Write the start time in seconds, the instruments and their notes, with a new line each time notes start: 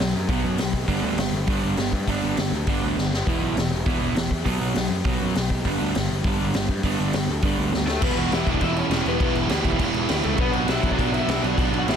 0.00 picked electric bass B1, overdriven electric guitar B2 F#3, distorted electric guitar B2 F#3, snare
0.15 picked electric bass F#2
0.28 picked electric bass B1, distorted electric guitar B2 F#3 B3, overdriven electric guitar B2 F#3 B3, kick, open hi-hat
0.44 picked electric bass F#2
0.58 picked electric bass B1, distorted electric guitar B2 F#3, overdriven electric guitar B2 F#3, snare, open hi-hat
0.73 kick
0.88 picked electric bass G1, distorted electric guitar G2 D3 G3, overdriven electric guitar G3 B3 D4, kick, open hi-hat
1.02 picked electric bass D2
1.17 picked electric bass G1, distorted electric guitar G2 D3, overdriven electric guitar G3 B3, snare, open hi-hat
1.32 picked electric bass G1
1.47 picked electric bass G1, distorted electric guitar G2 D3 G3, overdriven electric guitar G3 B3 D4, kick, open hi-hat
1.63 picked electric bass G1
1.77 picked electric bass G1, distorted electric guitar G2 D3, overdriven electric guitar G3 B3, snare, open hi-hat
1.92 picked electric bass G2, kick
2.07 picked electric bass G1, distorted electric guitar G2 D3 G3, overdriven electric guitar G3 B3 D4, kick, open hi-hat
2.23 picked electric bass G1
2.37 picked electric bass G1, distorted electric guitar G2 D3, overdriven electric guitar G3 B3, snare, open hi-hat
2.51 picked electric bass D2
2.67 picked electric bass G1, distorted electric guitar G2 D3 G3, overdriven electric guitar G3 B3 D4, kick, open hi-hat
2.83 picked electric bass D2
2.96 picked electric bass G1, distorted electric guitar G2 D3, overdriven electric guitar G3 B3, snare
3.13 snare
3.27 picked electric bass E1, distorted electric guitar E2 B2 E3, overdriven electric guitar E3 B3 E4, kick, open hi-hat
3.42 picked electric bass B1
3.56 picked electric bass E1, distorted electric guitar E2 B2, overdriven electric guitar E3 B3, snare, open hi-hat
3.71 picked electric bass E1
3.86 picked electric bass E1, distorted electric guitar E2 B2 E3, overdriven electric guitar E3 B3 E4, kick, open hi-hat
4.01 picked electric bass E1
4.15 picked electric bass E1, distorted electric guitar E2 B2, overdriven electric guitar E3 B3, snare, open hi-hat
4.31 picked electric bass E2, kick
4.45 picked electric bass B1, overdriven electric guitar B2 F#3 B3, distorted electric guitar B2 F#3 B3, kick, open hi-hat
4.61 picked electric bass B1
4.75 picked electric bass B1, overdriven electric guitar B2 F#3, distorted electric guitar B2 F#3, snare, open hi-hat
4.90 picked electric bass F#2
5.05 picked electric bass B1, overdriven electric guitar B2 F#3 B3, distorted electric guitar B2 F#3 B3, kick, open hi-hat
5.21 picked electric bass F#2
5.35 picked electric bass B1, overdriven electric guitar B2 F#3, distorted electric guitar B2 F#3, snare, open hi-hat
5.50 kick
5.65 picked electric bass G1, distorted electric guitar G2 D3 G3, overdriven electric guitar G3 B3 D4, kick, open hi-hat
5.81 picked electric bass D2
5.95 picked electric bass G1, distorted electric guitar G2 D3, overdriven electric guitar G3 B3, snare, open hi-hat
6.11 picked electric bass G1
6.24 picked electric bass G1, distorted electric guitar G2 D3 G3, overdriven electric guitar G3 B3 D4, kick, open hi-hat
6.41 picked electric bass G1
6.54 picked electric bass G1, distorted electric guitar G2 D3, overdriven electric guitar G3 B3, snare, open hi-hat
6.69 picked electric bass G2, kick
6.83 picked electric bass G1, distorted electric guitar G2 D3 G3, overdriven electric guitar G3 B3 D4, kick, open hi-hat
6.99 picked electric bass G1
7.13 picked electric bass G1, distorted electric guitar G2 D3, overdriven electric guitar G3 B3, snare, open hi-hat
7.28 picked electric bass D2
7.42 picked electric bass G1, distorted electric guitar G2 D3 G3, overdriven electric guitar G3 B3 D4, kick, open hi-hat
7.58 picked electric bass D2
7.72 picked electric bass D2, distorted electric guitar G2 D3, overdriven electric guitar G3 B3, snare
7.87 lead electric guitar A3 A4, snare
8.01 picked electric bass E1, distorted electric guitar E2 B2 E3, overdriven electric guitar E3 B3 E4 G4, lead electric guitar B3 B4, kick, crash
8.17 picked electric bass E1, lead electric guitar F#4 F#5, crash
8.30 picked electric bass E1, distorted electric guitar E2 B2 E3, overdriven electric guitar E3 B3 E4 G4, lead electric guitar E4 E5, snare, crash
8.47 picked electric bass E1, lead electric guitar D4 D5, kick, crash
8.54 kick
8.61 picked electric bass E1, distorted electric guitar E2 B2 E3, overdriven electric guitar E3 B3 E4 G4, lead electric guitar E4 E5, kick, crash
8.76 lead electric guitar C#4 C#5, crash
8.90 picked electric bass E1, distorted electric guitar E2 B2 E3, overdriven electric guitar E3 B3 E4 G4, snare, crash
9.05 picked electric bass E1, lead electric guitar B3 B4, crash
9.19 picked electric bass E1, distorted electric guitar E2 B2 E3, overdriven electric guitar E3 B3 E4 G4, kick, crash
9.34 picked electric bass E1, crash
9.48 picked electric bass D2, distorted electric guitar E2 B2 E3, overdriven electric guitar E3 B3 E4 G4, snare, crash
9.65 picked electric bass E1, kick, crash
9.72 kick
9.78 picked electric bass E1, distorted electric guitar E2 B2 E3, overdriven electric guitar E3 B3 E4 G4, kick, crash
9.94 picked electric bass E1, crash
10.08 picked electric bass D2, distorted electric guitar E2 B2 E3, overdriven electric guitar E3 B3 E4 G4, snare, crash
10.23 picked electric bass C#2, lead electric guitar A3 A4, crash
10.38 picked electric bass B1, distorted electric guitar B2 F#3 B3, overdriven electric guitar B2 F#3 B3 D4 F#4, lead electric guitar B3 B4, kick, crash
10.53 picked electric bass B1, lead electric guitar F#4 F#5, crash
10.67 picked electric bass B1, distorted electric guitar B2 F#3 B3, overdriven electric guitar B2 F#3 B3 D4 F#4, lead electric guitar E4 E5, snare, crash
10.83 picked electric bass B1, kick, crash
10.91 lead electric guitar D4 D5, kick
10.98 picked electric bass B1, distorted electric guitar B2 F#3 B3, overdriven electric guitar B2 F#3 B3 D4 F#4, kick, crash
11.11 lead electric guitar E4 E5, crash
11.28 picked electric bass B1, distorted electric guitar B2 F#3 B3, overdriven electric guitar B2 F#3 B3 D4 F#4, snare, crash
11.43 picked electric bass B1, lead electric guitar D4 D5, crash
11.56 picked electric bass B1, overdriven electric guitar B2 F#3 B3 D4 F#4, distorted electric guitar B2 F#3 B3, lead electric guitar D4 D5, kick, crash
11.71 picked electric bass B1, crash
11.78 lead electric guitar F#5
11.82 lead electric guitar F#4 E5
11.87 picked electric bass A1, distorted electric guitar B2 F#3 B3, overdriven electric guitar B2 F#3 B3 D4 F#4, lead electric guitar E4, snare, crash